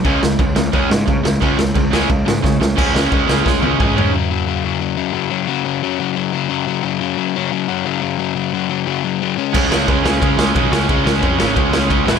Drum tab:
CC |x-x-x-x-|x-x-x---|x-x-----|--------|
RD |--------|--------|--------|--------|
SD |-o-o-o-o|-o-o-ooo|-o-oo---|--------|
T1 |--------|--------|-----o--|--------|
T2 |--------|--------|------o-|--------|
FT |--------|--------|-------o|--------|
BD |o-o-o-o-|o-o-o-o-|o-o-o-o-|--------|

CC |--------|--------|--------|x-------|
RD |--------|--------|--------|--x-x-x-|
SD |--------|--------|--------|-o-o-o-o|
T1 |--------|--------|--------|--------|
T2 |--------|--------|--------|--------|
FT |--------|--------|--------|--------|
BD |--------|--------|--------|o-o-o-o-|

CC |--------|
RD |x-x-x-x-|
SD |-o-o-o-o|
T1 |--------|
T2 |--------|
FT |--------|
BD |o-o-o-o-|